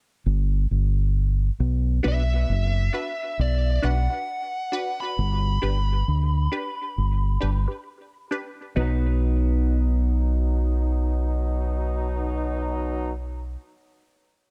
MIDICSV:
0, 0, Header, 1, 6, 480
1, 0, Start_track
1, 0, Tempo, 896861
1, 849, Time_signature, 4, 2, 24, 8
1, 7764, End_track
2, 0, Start_track
2, 0, Title_t, "Lead electric guitar"
2, 0, Program_c, 0, 29
2, 1113, Note_on_c, 0, 76, 80
2, 1823, Note_off_c, 0, 76, 0
2, 1825, Note_on_c, 0, 74, 76
2, 2059, Note_on_c, 0, 78, 88
2, 2063, Note_off_c, 0, 74, 0
2, 2679, Note_on_c, 0, 83, 89
2, 2692, Note_off_c, 0, 78, 0
2, 4190, Note_off_c, 0, 83, 0
2, 7764, End_track
3, 0, Start_track
3, 0, Title_t, "Synth stab"
3, 0, Program_c, 1, 62
3, 1087, Note_on_c, 1, 62, 92
3, 1089, Note_on_c, 1, 66, 87
3, 1092, Note_on_c, 1, 71, 103
3, 1170, Note_off_c, 1, 62, 0
3, 1171, Note_off_c, 1, 66, 0
3, 1173, Note_off_c, 1, 71, 0
3, 1567, Note_on_c, 1, 62, 95
3, 1572, Note_on_c, 1, 66, 85
3, 1574, Note_on_c, 1, 71, 98
3, 1650, Note_off_c, 1, 62, 0
3, 1653, Note_off_c, 1, 66, 0
3, 1654, Note_off_c, 1, 71, 0
3, 2046, Note_on_c, 1, 62, 102
3, 2049, Note_on_c, 1, 66, 85
3, 2051, Note_on_c, 1, 71, 112
3, 2130, Note_off_c, 1, 62, 0
3, 2131, Note_off_c, 1, 66, 0
3, 2132, Note_off_c, 1, 71, 0
3, 2194, Note_on_c, 1, 66, 42
3, 2194, Note_on_c, 1, 71, 45
3, 2231, Note_off_c, 1, 66, 0
3, 2231, Note_off_c, 1, 71, 0
3, 2526, Note_on_c, 1, 62, 99
3, 2528, Note_on_c, 1, 66, 87
3, 2532, Note_on_c, 1, 71, 111
3, 2609, Note_off_c, 1, 62, 0
3, 2610, Note_off_c, 1, 66, 0
3, 2612, Note_off_c, 1, 71, 0
3, 3006, Note_on_c, 1, 62, 95
3, 3009, Note_on_c, 1, 67, 90
3, 3012, Note_on_c, 1, 71, 103
3, 3089, Note_off_c, 1, 62, 0
3, 3091, Note_off_c, 1, 67, 0
3, 3092, Note_off_c, 1, 71, 0
3, 3488, Note_on_c, 1, 62, 91
3, 3491, Note_on_c, 1, 67, 83
3, 3492, Note_on_c, 1, 71, 102
3, 3570, Note_off_c, 1, 62, 0
3, 3571, Note_off_c, 1, 67, 0
3, 3572, Note_off_c, 1, 71, 0
3, 3963, Note_on_c, 1, 62, 93
3, 3967, Note_on_c, 1, 67, 86
3, 3970, Note_on_c, 1, 71, 104
3, 4048, Note_off_c, 1, 62, 0
3, 4049, Note_off_c, 1, 67, 0
3, 4051, Note_off_c, 1, 71, 0
3, 4109, Note_on_c, 1, 71, 44
3, 4111, Note_on_c, 1, 67, 37
3, 4148, Note_off_c, 1, 71, 0
3, 4149, Note_off_c, 1, 67, 0
3, 4447, Note_on_c, 1, 62, 98
3, 4450, Note_on_c, 1, 67, 91
3, 4454, Note_on_c, 1, 71, 111
3, 4529, Note_off_c, 1, 62, 0
3, 4531, Note_off_c, 1, 67, 0
3, 4533, Note_off_c, 1, 71, 0
3, 4687, Note_on_c, 1, 63, 84
3, 4689, Note_on_c, 1, 66, 77
3, 4691, Note_on_c, 1, 71, 91
3, 7248, Note_off_c, 1, 63, 0
3, 7250, Note_off_c, 1, 66, 0
3, 7253, Note_off_c, 1, 71, 0
3, 7764, End_track
4, 0, Start_track
4, 0, Title_t, "Clean electric guitar"
4, 0, Program_c, 2, 27
4, 1093, Note_on_c, 2, 59, 81
4, 1095, Note_on_c, 2, 62, 89
4, 1098, Note_on_c, 2, 66, 94
4, 1099, Note_on_c, 2, 71, 93
4, 1184, Note_off_c, 2, 59, 0
4, 1185, Note_off_c, 2, 62, 0
4, 1186, Note_off_c, 2, 66, 0
4, 1187, Note_off_c, 2, 71, 0
4, 4688, Note_on_c, 2, 59, 82
4, 4698, Note_on_c, 2, 63, 85
4, 4707, Note_on_c, 2, 66, 82
4, 4715, Note_on_c, 2, 71, 92
4, 7271, Note_off_c, 2, 59, 0
4, 7281, Note_off_c, 2, 63, 0
4, 7289, Note_off_c, 2, 66, 0
4, 7298, Note_off_c, 2, 71, 0
4, 7764, End_track
5, 0, Start_track
5, 0, Title_t, "Trombone section"
5, 0, Program_c, 3, 61
5, 4685, Note_on_c, 3, 47, 80
5, 4688, Note_on_c, 3, 54, 80
5, 4688, Note_on_c, 3, 63, 87
5, 7012, Note_off_c, 3, 47, 0
5, 7013, Note_off_c, 3, 54, 0
5, 7013, Note_off_c, 3, 63, 0
5, 7764, End_track
6, 0, Start_track
6, 0, Title_t, "Fingered electric bass"
6, 0, Program_c, 4, 33
6, 139, Note_on_c, 4, 31, 90
6, 347, Note_off_c, 4, 31, 0
6, 379, Note_on_c, 4, 31, 78
6, 798, Note_off_c, 4, 31, 0
6, 856, Note_on_c, 4, 35, 109
6, 1065, Note_off_c, 4, 35, 0
6, 1098, Note_on_c, 4, 35, 84
6, 1306, Note_off_c, 4, 35, 0
6, 1335, Note_on_c, 4, 30, 79
6, 1544, Note_off_c, 4, 30, 0
6, 1815, Note_on_c, 4, 35, 93
6, 2024, Note_off_c, 4, 35, 0
6, 2054, Note_on_c, 4, 35, 82
6, 2176, Note_off_c, 4, 35, 0
6, 2775, Note_on_c, 4, 31, 105
6, 2983, Note_off_c, 4, 31, 0
6, 3013, Note_on_c, 4, 31, 79
6, 3222, Note_off_c, 4, 31, 0
6, 3254, Note_on_c, 4, 38, 85
6, 3463, Note_off_c, 4, 38, 0
6, 3735, Note_on_c, 4, 31, 75
6, 3943, Note_off_c, 4, 31, 0
6, 3975, Note_on_c, 4, 31, 82
6, 4096, Note_off_c, 4, 31, 0
6, 4692, Note_on_c, 4, 35, 98
6, 7253, Note_off_c, 4, 35, 0
6, 7764, End_track
0, 0, End_of_file